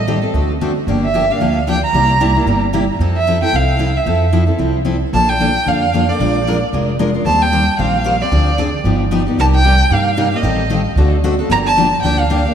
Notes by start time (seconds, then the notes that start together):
Already playing: A1
0.07 D#3 G3 C4 G4 A4
0.22 C4 G4 A4
0.33 D2 D3 A3 C4 F#4 A4
0.61 D3 A3 C4 F#4 A4
0.87 G1 D3 F3 A#3 D4 G4
1.05 E5
1.14 D3 F3 A#3 D4 G4
1.30 A#3 D4 G4 F5
1.40 D2 D3 F3 A#3 D4 G4
1.67 D3 F3 A#3 D4 G4 G5
1.84 A#5
1.93 C2 C3 G3 A#3 E4 G4
2.20 C3 G3 A#3 E4 G4
2.35 A#3 E4 G4
2.46 G1 C3 G3 A#3 E4 G4
2.73 C3 G3 A#3 E4 G4
2.99 F2 F3 C4 E4 A4
3.17 E5
3.27 F3 C4 E4 A4
3.42 C4 E4 A4 G5
3.53 C2 F3 C4 E4 A4 F5
3.79 F3 C4 E4 A4
3.97 E5
4.06 F2 F3 C4 E4 A4
4.32 F3 C4 E4 A4
4.46 C4 E4 A4
4.58 C2 F3 C4 E4 A4
4.85 F3 C4 E4 A4
5.13 A#1 D3 F3 A#3 D4 A4 A5
5.29 G5
5.40 D3 F3 A#3 D4 A4
5.66 F2 D3 F3 A#3 D4 A4 F5
5.93 D3 F3 A#3 D4 A4
6.09 A#3 D4 A4 D5
6.19 A#1 F3 G#3 D4 F4 A#4
6.47 F3 G#3 D4 F4 A#4
6.73 F1 F3 G#3 D4 F4 A#4
6.99 F3 G#3 D4 F4 A#4
7.14 D4 F4 A#4
7.25 D#2 D#3 G3 C4 G4 C5 A5
7.42 G5
7.52 D#3 G3 C4 G4 C5
7.79 A#1 D#3 G3 C4 G4 C5 F5
8.04 D#3 G3 C4 G4 C5
8.21 C4 G4 C5 D5
8.31 D2 D3 F3 C4 D4 G#4
8.58 D3 F3 C4 D4 G#4
8.84 G1 F3 B3 D#4 G4
9.11 F3 B3 D#4 G4
9.26 B3 D#4 G4
9.37 C2 C3 G3 A#3 D#4 G4 A5
9.56 G5
9.64 C3 G3 A#3 D#4 G4
9.90 G2 C3 G3 A#3 D#4 G4 F5
10.17 C3 G3 A#3 D#4 G4
10.32 A#3 D#4 G4
10.36 D#5
10.43 A1 D#3 G3 C4 G4 A4
10.70 D#3 G3 C4 G4 A4
10.96 D2 D3 A3 C4 F#4 A4
11.24 D3 A3 C4 F#4 A4
11.39 C4 F#4 A4
11.49 G1 D3 F3 A#3 D4 G4 A#5
11.67 A5
11.76 D3 F3 A#3 D4 G4
12.02 D2 D3 F3 A#3 D4 G4 G5
12.20 F5
12.30 D3 F3 A#3 D4 G4
12.45 A#3 D4 G4